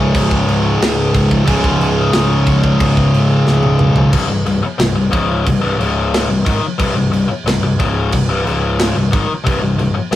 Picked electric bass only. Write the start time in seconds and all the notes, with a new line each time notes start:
0.15 C#1
0.46 C#1
0.78 C#1
1.14 C#1
1.48 C#1
1.79 C#1
2.13 C#1
2.47 C#1
2.80 C#1
3.13 G#1
3.46 C#1
3.79 B1
4.13 C1
4.30 C1
4.46 C1
4.63 muted picked electric bass stroke
4.79 C1
4.95 C1
5.13 C#1
5.47 C1
5.61 C1
5.78 C#1
6.28 C1
6.47 G#1
6.62 muted picked electric bass stroke
6.80 C1
6.96 C1
7.12 C1
7.28 muted picked electric bass stroke
7.44 C1
7.62 C1
7.80 C#1
8.13 C1
8.28 C1
8.45 C#1
8.95 C1
9.13 G#1
9.27 muted picked electric bass stroke
9.46 C1
9.62 C1
9.78 C1
9.95 muted picked electric bass stroke
10.12 C1